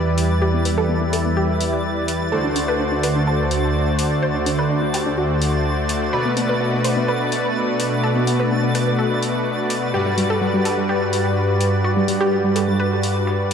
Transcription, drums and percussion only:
0.18 open hi-hat medium
0.42 closed hi-hat medium
0.65 closed hi-hat medium
0.65 open hi-hat loud
0.89 closed hi-hat medium
1.13 open hi-hat medium
1.37 closed hi-hat medium
1.61 closed hi-hat medium
1.61 open hi-hat loud
1.84 closed hi-hat medium
2.08 open hi-hat loud
2.21 snare medium
2.32 closed hi-hat medium
2.56 open hi-hat loud
2.80 closed hi-hat medium
3.03 open hi-hat medium
3.27 closed hi-hat medium
3.51 closed hi-hat medium
3.51 open hi-hat loud
3.75 closed hi-hat medium
3.99 open hi-hat loud
4.22 closed hi-hat medium
4.46 closed hi-hat medium
4.46 open hi-hat loud
4.70 closed hi-hat medium
4.94 open hi-hat medium
5.18 closed hi-hat medium
5.42 closed hi-hat medium
5.42 open hi-hat loud
5.65 closed hi-hat medium
5.89 open hi-hat loud
6.01 snare medium
6.13 closed hi-hat medium
6.37 open hi-hat loud
6.61 closed hi-hat medium
6.84 open hi-hat medium
7.32 open hi-hat medium
7.56 closed hi-hat medium
7.80 open hi-hat medium
8.03 closed hi-hat medium
8.27 closed hi-hat medium
8.27 open hi-hat loud
8.51 closed hi-hat medium
8.75 open hi-hat medium
8.99 closed hi-hat medium
9.23 closed hi-hat medium
9.23 open hi-hat loud
9.46 closed hi-hat medium
9.70 open hi-hat medium
9.82 snare soft
9.94 closed hi-hat medium
10.18 closed hi-hat medium
10.18 open hi-hat loud
10.42 closed hi-hat medium
10.65 open hi-hat medium
10.78 closed hi-hat soft
10.89 closed hi-hat medium
11.13 closed hi-hat medium
11.13 open hi-hat medium
11.37 closed hi-hat medium
11.61 closed hi-hat medium
11.61 open hi-hat medium
11.84 closed hi-hat medium
12.08 closed hi-hat medium
12.08 open hi-hat loud
12.32 closed hi-hat medium
12.56 open hi-hat medium
12.80 closed hi-hat medium
13.03 closed hi-hat medium
13.03 open hi-hat loud
13.27 snare loud
13.27 closed hi-hat medium

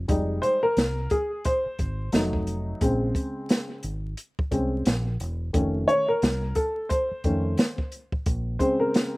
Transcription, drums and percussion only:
0.09 kick loud
0.09 closed hi-hat medium
0.43 closed hi-hat medium
0.77 snare loud
0.77 closed hi-hat medium
1.10 kick medium
1.10 closed hi-hat medium
1.45 kick medium
1.45 closed hi-hat loud
1.79 kick medium
1.79 closed hi-hat medium
2.12 snare loud
2.12 closed hi-hat medium
2.33 kick medium
2.47 closed hi-hat medium
2.81 kick loud
2.81 closed hi-hat medium
3.15 kick medium
3.15 closed hi-hat medium
3.49 snare loud
3.49 closed hi-hat medium
3.83 closed hi-hat medium
4.17 closed hi-hat medium
4.39 kick loud
4.52 kick medium
4.52 closed hi-hat medium
4.86 snare loud
4.86 closed hi-hat medium
5.20 closed hi-hat medium
5.54 kick loud
5.54 closed hi-hat medium
5.89 closed hi-hat medium
6.22 snare loud
6.22 closed hi-hat medium
6.55 kick medium
6.55 closed hi-hat medium
6.90 kick loud
6.90 closed hi-hat medium
7.24 kick medium
7.24 closed hi-hat medium
7.57 snare loud
7.57 closed hi-hat medium
7.78 kick medium
7.92 closed hi-hat medium
8.12 kick medium
8.26 kick loud
8.26 closed hi-hat medium
8.60 kick medium
8.60 closed hi-hat medium
8.94 snare loud
8.94 closed hi-hat medium

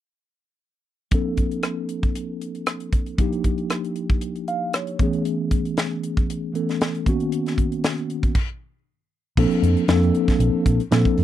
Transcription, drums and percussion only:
1.11 kick medium
1.11 closed hi-hat medium
1.37 kick medium
1.37 closed hi-hat soft
1.51 closed hi-hat soft
1.63 cross-stick medium
1.63 closed hi-hat medium
1.89 closed hi-hat soft
2.03 kick medium
2.03 closed hi-hat soft
2.15 closed hi-hat medium
2.41 closed hi-hat soft
2.55 closed hi-hat soft
2.66 cross-stick medium
2.66 closed hi-hat medium
2.80 closed hi-hat soft
2.93 kick medium
2.93 closed hi-hat soft
3.06 closed hi-hat soft
3.18 kick medium
3.18 closed hi-hat medium
3.33 closed hi-hat soft
3.44 kick medium
3.44 closed hi-hat soft
3.58 closed hi-hat soft
3.70 cross-stick medium
3.70 closed hi-hat medium
3.85 closed hi-hat soft
3.96 closed hi-hat soft
4.10 kick medium
4.10 closed hi-hat soft
4.21 closed hi-hat medium
4.36 closed hi-hat soft
4.48 closed hi-hat soft
4.73 cross-stick medium
4.73 closed hi-hat medium
4.87 closed hi-hat soft
4.99 kick medium
4.99 closed hi-hat soft
5.13 closed hi-hat soft
5.25 closed hi-hat medium
5.51 kick medium
5.51 closed hi-hat soft
5.65 closed hi-hat soft
5.77 snare medium
5.77 closed hi-hat medium
6.03 closed hi-hat medium
6.17 kick medium
6.17 closed hi-hat soft
6.30 closed hi-hat medium
6.55 closed hi-hat medium
6.69 snare soft
6.69 closed hi-hat soft
6.81 snare medium
6.81 closed hi-hat medium
6.95 closed hi-hat soft
7.06 kick medium
7.06 closed hi-hat soft
7.20 closed hi-hat soft
7.32 closed hi-hat medium
7.46 snare soft
7.46 closed hi-hat soft
7.58 kick medium
7.58 closed hi-hat medium
7.72 closed hi-hat soft
7.84 snare medium
7.84 closed hi-hat medium
7.98 closed hi-hat soft
8.10 closed hi-hat soft
8.23 kick medium
8.23 closed hi-hat soft
8.35 kick medium
8.35 crash medium
9.37 kick medium
9.37 crash medium
9.51 closed hi-hat soft
9.64 closed hi-hat medium
9.77 closed hi-hat soft
9.88 snare loud
9.88 closed hi-hat medium
10.03 closed hi-hat soft
10.15 closed hi-hat medium
10.28 kick medium
10.28 snare soft
10.28 closed hi-hat soft
10.40 closed hi-hat medium
10.66 kick medium
10.66 closed hi-hat medium
10.80 closed hi-hat soft
10.92 snare medium
10.92 closed hi-hat medium
11.05 kick medium
11.05 closed hi-hat soft
11.18 open hi-hat medium

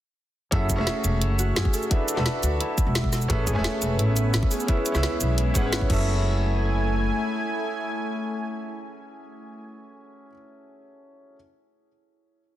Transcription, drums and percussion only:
0.52 kick loud
0.52 closed hi-hat loud
0.70 kick medium
0.70 closed hi-hat medium
0.70 shaker medium
0.78 cross-stick medium
0.87 snare loud
0.87 closed hi-hat medium
1.04 closed hi-hat medium
1.04 shaker medium
1.21 closed hi-hat loud
1.39 closed hi-hat medium
1.39 shaker medium
1.56 snare loud
1.56 closed hi-hat loud
1.56 shaker soft
1.65 kick loud
1.65 cross-stick soft
1.74 open hi-hat medium
1.74 shaker medium
1.83 shaker soft
1.91 kick loud
1.91 closed hi-hat loud
2.08 closed hi-hat medium
2.08 shaker medium
2.17 snare soft
2.26 snare loud
2.26 closed hi-hat medium
2.43 closed hi-hat medium
2.43 shaker medium
2.60 closed hi-hat loud
2.78 kick loud
2.78 closed hi-hat medium
2.78 shaker medium
2.95 snare loud
2.95 closed hi-hat medium
2.95 shaker soft
3.04 kick medium
3.13 snare soft
3.13 open hi-hat medium
3.13 shaker medium
3.22 shaker soft
3.30 kick loud
3.30 closed hi-hat medium
3.47 kick medium
3.47 closed hi-hat medium
3.47 shaker medium
3.56 cross-stick medium
3.64 snare loud
3.64 closed hi-hat medium
3.82 closed hi-hat medium
3.82 shaker medium
3.99 closed hi-hat medium
4.16 closed hi-hat medium
4.16 shaker medium
4.34 snare loud
4.34 closed hi-hat medium
4.34 shaker soft
4.43 kick loud
4.43 cross-stick soft
4.51 open hi-hat medium
4.51 shaker medium
4.60 shaker soft
4.68 kick loud
4.68 closed hi-hat medium
4.77 cross-stick soft
4.86 closed hi-hat medium
4.86 shaker medium
4.95 cross-stick medium
4.95 snare soft
4.95 shaker soft
5.03 snare loud
5.03 closed hi-hat medium
5.21 closed hi-hat medium
5.21 shaker medium
5.38 closed hi-hat medium
5.55 kick loud
5.55 closed hi-hat medium
5.55 shaker medium
5.73 snare loud
5.73 closed hi-hat medium
5.73 shaker soft
5.81 kick medium
5.90 kick loud
5.90 crash medium

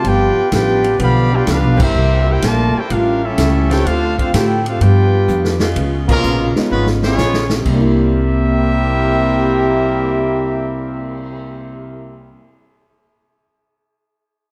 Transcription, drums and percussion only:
0.05 kick soft
0.05 ride medium
0.52 kick soft
0.52 snare medium
0.52 hi-hat pedal medium
0.52 ride medium
0.84 ride medium
1.00 kick soft
1.00 ride medium
1.47 kick soft
1.47 snare medium
1.47 hi-hat pedal medium
1.47 ride medium
1.80 kick loud
1.80 crash medium
2.42 kick soft
2.42 snare medium
2.42 hi-hat pedal medium
2.42 ride medium
2.90 kick soft
2.90 ride medium
3.38 kick soft
3.38 snare medium
3.38 hi-hat pedal medium
3.38 ride medium
3.71 snare medium
3.71 ride medium
3.86 kick soft
3.86 ride medium
4.19 kick medium
4.19 ride medium
4.34 kick soft
4.34 snare medium
4.34 hi-hat pedal medium
4.34 ride medium
4.66 ride medium
4.81 kick soft
4.81 ride medium
5.28 hi-hat pedal medium
5.45 snare medium
5.60 snare loud
5.76 kick soft
5.76 ride medium
6.09 kick medium
6.09 crash medium
6.23 hi-hat pedal medium
6.56 snare medium
6.87 snare medium
7.03 snare medium
7.18 snare medium
7.18 hi-hat pedal medium
7.34 snare medium
7.50 snare loud
7.66 kick medium
7.66 crash medium
7.98 cymbal swell medium

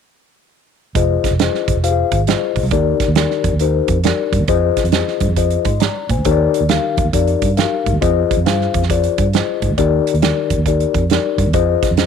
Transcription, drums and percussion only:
0.95 kick loud
0.95 closed hi-hat medium
1.24 kick medium
1.24 snare soft
1.24 closed hi-hat medium
1.39 snare loud
1.39 closed hi-hat medium
1.55 snare soft
1.68 kick medium
1.68 closed hi-hat medium
1.84 closed hi-hat medium
2.12 kick medium
2.12 closed hi-hat medium
2.27 snare loud
2.27 closed hi-hat medium
2.56 kick medium
2.56 open hi-hat soft
2.71 kick loud
2.71 closed hi-hat medium
3.00 kick medium
3.00 snare soft
3.00 closed hi-hat medium
3.15 snare loud
3.15 closed hi-hat medium
3.31 snare soft
3.44 kick medium
3.44 closed hi-hat medium
3.59 closed hi-hat medium
3.88 kick medium
3.88 closed hi-hat medium
4.04 snare medium
4.04 closed hi-hat medium
4.33 kick medium
4.33 closed hi-hat medium
4.48 kick medium
4.48 closed hi-hat medium
4.77 kick medium
4.77 snare soft
4.77 closed hi-hat medium
4.85 closed hi-hat soft
4.92 snare medium
4.92 closed hi-hat medium
5.08 snare soft
5.20 kick medium
5.20 closed hi-hat medium
5.36 kick medium
5.36 closed hi-hat medium
5.50 closed hi-hat soft
5.65 kick medium
5.65 closed hi-hat medium
5.80 snare medium
5.80 closed hi-hat medium
6.09 kick medium
6.09 closed hi-hat medium
6.25 kick loud
6.25 closed hi-hat medium
6.54 closed hi-hat medium
6.69 snare medium
6.69 closed hi-hat medium
6.97 kick medium
6.97 closed hi-hat medium
7.13 kick medium
7.13 closed hi-hat medium
7.27 closed hi-hat soft
7.42 kick medium
7.42 closed hi-hat medium
7.57 snare medium
7.57 closed hi-hat medium
7.86 kick medium
7.86 closed hi-hat medium
8.02 kick loud
8.02 closed hi-hat medium
8.31 kick medium
8.31 closed hi-hat medium
8.46 snare loud
8.46 closed hi-hat medium
8.61 snare soft
8.74 kick medium
8.74 closed hi-hat medium
8.83 snare soft
8.90 kick medium
8.90 closed hi-hat medium
9.04 closed hi-hat medium
9.18 kick medium
9.18 closed hi-hat medium
9.33 snare medium
9.33 closed hi-hat medium
9.62 kick medium
9.62 closed hi-hat medium
9.78 kick medium
9.78 closed hi-hat medium
10.07 closed hi-hat medium
10.15 closed hi-hat soft
10.22 snare loud
10.22 closed hi-hat medium
10.50 kick medium
10.50 closed hi-hat medium
10.66 kick medium
10.66 closed hi-hat medium
10.80 closed hi-hat soft
10.94 kick medium
10.94 closed hi-hat medium
11.10 snare medium
11.10 closed hi-hat medium
11.38 kick medium
11.38 closed hi-hat medium
11.53 kick loud
11.53 closed hi-hat medium
11.83 kick medium
11.83 snare soft
11.83 closed hi-hat medium
11.97 snare loud
11.97 closed hi-hat medium

